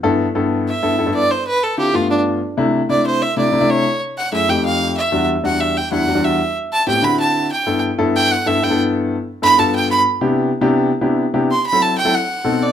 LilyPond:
<<
  \new Staff \with { instrumentName = "Fiddle" } { \time 4/4 \key g \major \tempo 4 = 188 r2 e''4. d''8 | c''8 b'8 a'8 g'8 f'8 d'8 r4 | r4 d''8 c''8 e''8 d''4 cis''8~ | cis''8 r8 fis''8 e''8 g''8 f''4 e''8~ |
e''8 r8 fis''8 e''8 g''8 fis''4 e''8~ | e''8 r8 a''8 g''8 b''8 a''4 g''8~ | g''8 r4 g''8 fis''8 e''8 g''8 r8 | r4. b''8 a''8 g''8 b''8 r8 |
\key c \major r1 | c'''8 b''8 a''8 g''8 fis''4. d''8 | }
  \new Staff \with { instrumentName = "Grand piano" } { \time 4/4 \key g \major <g, b e' a'>8. r16 <g, b e' a'>4 r8 <g, b e' a'>16 r16 <g, b e' a'>16 <g, b e' a'>8. | r4. <d c' e' f'>16 r16 <g, a b f'>4. r8 | <c a d' e'>8. r16 <c a d' e'>4 r8 <c a d' e'>16 r16 <c a d' e'>16 <c a d' e'>8. | r4. <fis, a e' aes'>16 r16 <f, a c' ees' g'>4. r8 |
<e, g d' fis'>8. r16 <e, g d' fis'>4 r8 <e, g d' e'>16 r16 <e, g d' fis'>16 <e, g d' fis'>8. | r4. <a, b c' g'>16 r16 <d c' e' fis'>4. r8 | <g, b e' a'>8. r16 <g, b e' a'>4 r8 <g, b e' a'>16 r16 <g, b e' a'>16 <g, b e' a'>8.~ | <g, b e' a'>8. r8. <g, b e' a'>16 r16 <g, b f' a'>4. r8 |
\key c \major <c b d' e' g'>4 r16 <c b d' e' g'>8. r8 <c b d' e' g'>8. r16 <c b d' e' g'>8 | r8. <fis c' e' a'>8. r16 <fis c' e' a'>16 r4 <b, c' dis' fis' a'>8. r16 | }
>>